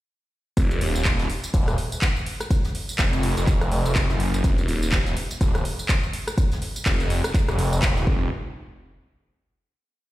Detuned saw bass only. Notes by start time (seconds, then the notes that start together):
0.57 F1
0.81 D#1
1.54 D#1
2.99 F1
3.37 F1
3.71 F1
4.10 F#1
4.44 F1
4.68 D#1
5.41 D#1
6.86 F1
7.48 F1
7.83 D#1
8.07 F1